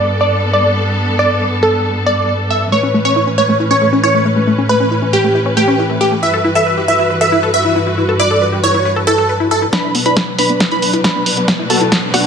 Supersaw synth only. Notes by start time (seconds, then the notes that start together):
0.21 D5
0.53 D5
1.19 D5
1.63 A4
2.06 D5
2.50 E5
2.72 C#5
3.05 C#5
3.38 C#5
3.71 C#5
4.04 C#5
4.69 B4
5.13 G4
5.57 G4
6.01 G4
6.23 E5
6.55 E5
6.88 E5
7.21 E5
7.54 E5
8.20 D5
8.64 C#5
9.07 A4
9.51 A4
9.73 D4 B4
10.06 D4 B4
10.39 D4 B4
10.71 D4 B4
11.04 D4 B4
11.70 F#4 A4
12.14 D4 F#4